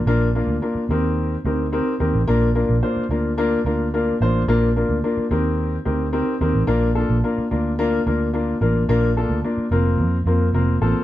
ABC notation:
X:1
M:4/4
L:1/16
Q:1/4=109
K:Bb
V:1 name="Upright piano"
[B,DFB]2 [B,DFB]2 [B,DFB]2 [CEGB]4 [CEGB]2 [CEGB]2 [CEGB]2 | [B,DFB]2 [B,DFB]2 [B,DFc]2 [B,DFB]2 [B,DFB]2 [B,DFB]2 [B,DFB]2 [B,DFc]2 | [B,DFB]2 [B,DFB]2 [B,DFB]2 [CEGB]4 [CEGB]2 [CEGB]2 [CEGB]2 | [B,DFB]2 [B,DFA]2 [B,DFB]2 [B,DFB]2 [B,DFB]2 [B,DFB]2 [B,DFB]2 [B,DFB]2 |
[B,DFB]2 [B,DFA]2 [B,DFB]2 [B,CFB]4 [B,CFB]2 [B,CFB]2 [B,CFA]2 |]
V:2 name="Fingered electric bass" clef=bass
B,,,3 D,, z2 E,,4 D,,3 z E,, A,,, | B,,,3 B,,, z2 D,,4 D,,4 A,,,2 | B,,,3 D,, z2 E,,4 D,,3 z E,, A,,, | B,,,3 B,,, z2 D,,4 D,,4 A,,,2 |
B,,,3 D,, z2 F,,,2 F,,2 F,,2 F,,,2 A,,, z |]